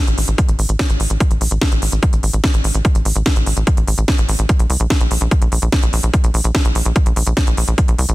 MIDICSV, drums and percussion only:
0, 0, Header, 1, 2, 480
1, 0, Start_track
1, 0, Tempo, 410959
1, 1406, Time_signature, 4, 2, 24, 8
1, 9517, End_track
2, 0, Start_track
2, 0, Title_t, "Drums"
2, 87, Note_on_c, 9, 42, 53
2, 203, Note_off_c, 9, 42, 0
2, 206, Note_on_c, 9, 46, 109
2, 323, Note_off_c, 9, 46, 0
2, 326, Note_on_c, 9, 42, 54
2, 443, Note_off_c, 9, 42, 0
2, 447, Note_on_c, 9, 36, 118
2, 447, Note_on_c, 9, 42, 82
2, 563, Note_off_c, 9, 36, 0
2, 563, Note_off_c, 9, 42, 0
2, 566, Note_on_c, 9, 42, 54
2, 683, Note_off_c, 9, 42, 0
2, 687, Note_on_c, 9, 46, 109
2, 803, Note_off_c, 9, 46, 0
2, 807, Note_on_c, 9, 42, 53
2, 923, Note_off_c, 9, 42, 0
2, 927, Note_on_c, 9, 36, 121
2, 927, Note_on_c, 9, 38, 122
2, 927, Note_on_c, 9, 42, 79
2, 1043, Note_off_c, 9, 36, 0
2, 1043, Note_off_c, 9, 38, 0
2, 1043, Note_off_c, 9, 42, 0
2, 1047, Note_on_c, 9, 42, 51
2, 1163, Note_off_c, 9, 42, 0
2, 1167, Note_on_c, 9, 46, 112
2, 1283, Note_off_c, 9, 46, 0
2, 1287, Note_on_c, 9, 42, 54
2, 1403, Note_off_c, 9, 42, 0
2, 1407, Note_on_c, 9, 36, 121
2, 1407, Note_on_c, 9, 42, 75
2, 1523, Note_off_c, 9, 36, 0
2, 1524, Note_off_c, 9, 42, 0
2, 1527, Note_on_c, 9, 42, 50
2, 1643, Note_off_c, 9, 42, 0
2, 1646, Note_on_c, 9, 46, 117
2, 1763, Note_off_c, 9, 46, 0
2, 1766, Note_on_c, 9, 42, 51
2, 1883, Note_off_c, 9, 42, 0
2, 1886, Note_on_c, 9, 38, 125
2, 1886, Note_on_c, 9, 42, 77
2, 1887, Note_on_c, 9, 36, 126
2, 2003, Note_off_c, 9, 36, 0
2, 2003, Note_off_c, 9, 38, 0
2, 2003, Note_off_c, 9, 42, 0
2, 2007, Note_on_c, 9, 42, 52
2, 2123, Note_off_c, 9, 42, 0
2, 2126, Note_on_c, 9, 46, 109
2, 2243, Note_off_c, 9, 46, 0
2, 2247, Note_on_c, 9, 42, 51
2, 2363, Note_off_c, 9, 42, 0
2, 2366, Note_on_c, 9, 42, 80
2, 2367, Note_on_c, 9, 36, 125
2, 2483, Note_off_c, 9, 36, 0
2, 2483, Note_off_c, 9, 42, 0
2, 2486, Note_on_c, 9, 42, 51
2, 2603, Note_off_c, 9, 42, 0
2, 2606, Note_on_c, 9, 46, 109
2, 2723, Note_off_c, 9, 46, 0
2, 2726, Note_on_c, 9, 42, 52
2, 2843, Note_off_c, 9, 42, 0
2, 2846, Note_on_c, 9, 38, 122
2, 2846, Note_on_c, 9, 42, 78
2, 2847, Note_on_c, 9, 36, 127
2, 2963, Note_off_c, 9, 36, 0
2, 2963, Note_off_c, 9, 38, 0
2, 2963, Note_off_c, 9, 42, 0
2, 2966, Note_on_c, 9, 42, 52
2, 3083, Note_off_c, 9, 42, 0
2, 3086, Note_on_c, 9, 46, 113
2, 3203, Note_off_c, 9, 46, 0
2, 3206, Note_on_c, 9, 42, 52
2, 3323, Note_off_c, 9, 42, 0
2, 3326, Note_on_c, 9, 36, 123
2, 3326, Note_on_c, 9, 42, 75
2, 3443, Note_off_c, 9, 36, 0
2, 3443, Note_off_c, 9, 42, 0
2, 3446, Note_on_c, 9, 42, 49
2, 3563, Note_off_c, 9, 42, 0
2, 3566, Note_on_c, 9, 46, 115
2, 3683, Note_off_c, 9, 46, 0
2, 3686, Note_on_c, 9, 42, 51
2, 3803, Note_off_c, 9, 42, 0
2, 3806, Note_on_c, 9, 36, 123
2, 3806, Note_on_c, 9, 38, 119
2, 3806, Note_on_c, 9, 42, 76
2, 3923, Note_off_c, 9, 36, 0
2, 3923, Note_off_c, 9, 38, 0
2, 3923, Note_off_c, 9, 42, 0
2, 3926, Note_on_c, 9, 42, 52
2, 4043, Note_off_c, 9, 42, 0
2, 4046, Note_on_c, 9, 46, 108
2, 4163, Note_off_c, 9, 46, 0
2, 4166, Note_on_c, 9, 42, 51
2, 4283, Note_off_c, 9, 42, 0
2, 4286, Note_on_c, 9, 36, 120
2, 4286, Note_on_c, 9, 42, 77
2, 4403, Note_off_c, 9, 36, 0
2, 4403, Note_off_c, 9, 42, 0
2, 4406, Note_on_c, 9, 42, 50
2, 4523, Note_off_c, 9, 42, 0
2, 4526, Note_on_c, 9, 46, 107
2, 4643, Note_off_c, 9, 46, 0
2, 4646, Note_on_c, 9, 42, 50
2, 4763, Note_off_c, 9, 42, 0
2, 4766, Note_on_c, 9, 36, 124
2, 4766, Note_on_c, 9, 38, 118
2, 4766, Note_on_c, 9, 42, 73
2, 4883, Note_off_c, 9, 36, 0
2, 4883, Note_off_c, 9, 38, 0
2, 4883, Note_off_c, 9, 42, 0
2, 4886, Note_on_c, 9, 42, 50
2, 5003, Note_off_c, 9, 42, 0
2, 5006, Note_on_c, 9, 46, 112
2, 5123, Note_off_c, 9, 46, 0
2, 5126, Note_on_c, 9, 42, 53
2, 5243, Note_off_c, 9, 42, 0
2, 5246, Note_on_c, 9, 36, 116
2, 5246, Note_on_c, 9, 42, 74
2, 5363, Note_off_c, 9, 36, 0
2, 5363, Note_off_c, 9, 42, 0
2, 5366, Note_on_c, 9, 42, 52
2, 5483, Note_off_c, 9, 42, 0
2, 5486, Note_on_c, 9, 46, 111
2, 5603, Note_off_c, 9, 46, 0
2, 5606, Note_on_c, 9, 42, 49
2, 5723, Note_off_c, 9, 42, 0
2, 5726, Note_on_c, 9, 36, 119
2, 5726, Note_on_c, 9, 38, 113
2, 5726, Note_on_c, 9, 42, 76
2, 5843, Note_off_c, 9, 36, 0
2, 5843, Note_off_c, 9, 38, 0
2, 5843, Note_off_c, 9, 42, 0
2, 5846, Note_on_c, 9, 42, 52
2, 5963, Note_off_c, 9, 42, 0
2, 5966, Note_on_c, 9, 46, 105
2, 6083, Note_off_c, 9, 46, 0
2, 6086, Note_on_c, 9, 42, 52
2, 6203, Note_off_c, 9, 42, 0
2, 6206, Note_on_c, 9, 36, 116
2, 6206, Note_on_c, 9, 42, 74
2, 6323, Note_off_c, 9, 36, 0
2, 6323, Note_off_c, 9, 42, 0
2, 6326, Note_on_c, 9, 42, 52
2, 6443, Note_off_c, 9, 42, 0
2, 6446, Note_on_c, 9, 46, 106
2, 6563, Note_off_c, 9, 46, 0
2, 6566, Note_on_c, 9, 42, 52
2, 6683, Note_off_c, 9, 42, 0
2, 6686, Note_on_c, 9, 36, 116
2, 6686, Note_on_c, 9, 38, 116
2, 6686, Note_on_c, 9, 42, 75
2, 6803, Note_off_c, 9, 36, 0
2, 6803, Note_off_c, 9, 38, 0
2, 6803, Note_off_c, 9, 42, 0
2, 6806, Note_on_c, 9, 42, 52
2, 6923, Note_off_c, 9, 42, 0
2, 6926, Note_on_c, 9, 46, 109
2, 7043, Note_off_c, 9, 46, 0
2, 7046, Note_on_c, 9, 42, 52
2, 7163, Note_off_c, 9, 42, 0
2, 7166, Note_on_c, 9, 36, 109
2, 7166, Note_on_c, 9, 42, 77
2, 7283, Note_off_c, 9, 36, 0
2, 7283, Note_off_c, 9, 42, 0
2, 7286, Note_on_c, 9, 42, 53
2, 7403, Note_off_c, 9, 42, 0
2, 7406, Note_on_c, 9, 46, 104
2, 7523, Note_off_c, 9, 46, 0
2, 7526, Note_on_c, 9, 42, 52
2, 7643, Note_off_c, 9, 42, 0
2, 7646, Note_on_c, 9, 36, 118
2, 7646, Note_on_c, 9, 38, 114
2, 7646, Note_on_c, 9, 42, 77
2, 7763, Note_off_c, 9, 36, 0
2, 7763, Note_off_c, 9, 38, 0
2, 7763, Note_off_c, 9, 42, 0
2, 7766, Note_on_c, 9, 42, 54
2, 7883, Note_off_c, 9, 42, 0
2, 7886, Note_on_c, 9, 46, 102
2, 8003, Note_off_c, 9, 46, 0
2, 8006, Note_on_c, 9, 42, 53
2, 8123, Note_off_c, 9, 42, 0
2, 8126, Note_on_c, 9, 36, 113
2, 8126, Note_on_c, 9, 42, 78
2, 8243, Note_off_c, 9, 36, 0
2, 8243, Note_off_c, 9, 42, 0
2, 8246, Note_on_c, 9, 42, 53
2, 8363, Note_off_c, 9, 42, 0
2, 8366, Note_on_c, 9, 46, 101
2, 8483, Note_off_c, 9, 46, 0
2, 8486, Note_on_c, 9, 42, 54
2, 8603, Note_off_c, 9, 42, 0
2, 8606, Note_on_c, 9, 36, 116
2, 8606, Note_on_c, 9, 38, 110
2, 8606, Note_on_c, 9, 42, 77
2, 8723, Note_off_c, 9, 36, 0
2, 8723, Note_off_c, 9, 38, 0
2, 8723, Note_off_c, 9, 42, 0
2, 8726, Note_on_c, 9, 42, 53
2, 8843, Note_off_c, 9, 42, 0
2, 8846, Note_on_c, 9, 46, 101
2, 8963, Note_off_c, 9, 46, 0
2, 8966, Note_on_c, 9, 42, 53
2, 9083, Note_off_c, 9, 42, 0
2, 9086, Note_on_c, 9, 36, 107
2, 9086, Note_on_c, 9, 42, 81
2, 9203, Note_off_c, 9, 36, 0
2, 9203, Note_off_c, 9, 42, 0
2, 9206, Note_on_c, 9, 42, 53
2, 9323, Note_off_c, 9, 42, 0
2, 9326, Note_on_c, 9, 46, 106
2, 9443, Note_off_c, 9, 46, 0
2, 9446, Note_on_c, 9, 42, 53
2, 9517, Note_off_c, 9, 42, 0
2, 9517, End_track
0, 0, End_of_file